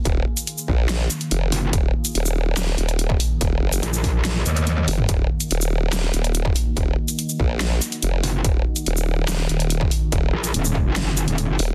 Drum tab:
HH |x--xx---x-xxx-o-|x--xx---x-xxx-o-|x--xx-o-x-xxx-o-|x--xx---x-xxx-o-|
SH |---x-x----x-----|---x-x--x-------|---x-x----x-----|---x-x--x-------|
SD |--------o-------|--------o-------|--------o-------|--------o-------|
T1 |----------------|----------------|------------oo--|----------------|
T2 |----------------|----------------|---------------o|----------------|
BD |o-----o---------|o------------o--|o-----o---------|o------------o--|

HH |x--xx---x-xxx-o-|x--xx---x-xxx-o-|x--xx---x-xxx-o-|
SH |---x-x----x-----|---x-x--x-------|---x-x----x-----|
SD |--------o-------|--------o-------|--------o-------|
T1 |----------------|----------------|----------------|
T2 |----------------|----------------|----------------|
BD |o-----o---------|o------------o--|o-----o---------|